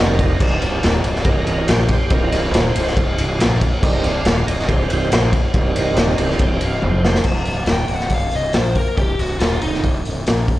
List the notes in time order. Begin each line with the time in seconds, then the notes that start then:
Already playing: F1 D#3 G3 C4 A#4 D#5
0.19 kick, ride
0.39 C1 D#3 G3 C4, kick, crash
0.62 C1, ride
0.83 D#1, snare, ride
1.04 C1, ride
1.15 snare
1.22 C1 D5 D#5, kick, ride
1.26 A#4
1.47 C1 A#4 D#5, ride
1.68 A#1 G4 C5, snare, ride
1.88 G4 C5, muted fingered electric bass stroke, kick, ride
2.10 C1 D#3 G3 C4 F4 A#4, kick, ride
2.32 C1 F4 A#4, ride
2.52 D#1 C5, snare, ride
2.76 C1, ride
2.87 snare
2.97 C1, kick, ride
3.18 C1, ride
3.40 A#1, snare, ride
3.61 muted fingered electric bass stroke, kick, ride
3.81 C1 D#3 G3 C4 D#5, kick, crash
3.99 E5
4.03 C1 F5, ride
4.25 D#1, snare, ride
4.47 C1 D#5, ride
4.59 snare
4.69 C1 C5, kick, ride
4.89 C1 D#3 G3 C4 B4 C5, ride
5.12 A#1, snare, ride
5.33 muted fingered electric bass stroke, kick, ride
5.54 C1 D#3 G3 C4, kick, ride
5.76 C1 D#5, ride
5.96 D#1 D#5, snare, ride
6.18 C1 D#3 G3 C4 F5, ride
6.30 snare
6.39 C1 G5, kick, ride
6.61 C1 F5, ride
6.82 F1 C5, high tom
7.05 snare
7.15 snare
7.24 C1, kick, crash
7.45 C1, open hi-hat
7.66 D#1, snare, open hi-hat
7.72 G5
7.88 C1, open hi-hat
7.94 F#5
8.00 snare
8.10 C1, kick, open hi-hat
8.14 F5
8.31 C1, open hi-hat
8.36 D#5
8.53 A#1 C5, snare, open hi-hat
8.75 A#4, muted fingered electric bass stroke, kick, open hi-hat
8.97 C1 G4, kick, open hi-hat
9.19 C1 F#4, open hi-hat
9.39 D#1 F4, snare, open hi-hat
9.62 C1 D#4, open hi-hat
9.74 snare
9.84 C1, kick, open hi-hat
10.05 C1, open hi-hat
10.27 A#1, snare, open hi-hat
10.48 muted fingered electric bass stroke, kick, open hi-hat